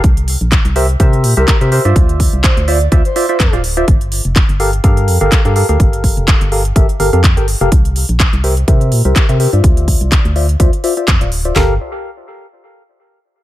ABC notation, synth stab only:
X:1
M:4/4
L:1/16
Q:"Swing 16ths" 1/4=125
K:Gdor
V:1 name="Synth stab"
z6 [GBce] z [GBce]3 [GBce]2 [GBce] [GBce] [Fcde]- | [Fcde]6 [Fcde] z [Fcde] z [Fcde] [Fcde] z [Fcdf] z [Fcde] | z6 [GABf] z [GABf]3 [GABf]2 [GABf] [GABf] [GABf]- | [GABf]6 [GABf] z [GABe] z [GABf] [GABf] z [GABg] z [GABf] |
z6 [GBce] z [GBce]3 [GBce]2 [GBce] [GBce] [Fcde]- | [Fcde]6 [Fcde] z [Fcde] z [Fcde] [Fcde] z [Fcdf] z [Fcde] | [GABf]2 z12 z2 |]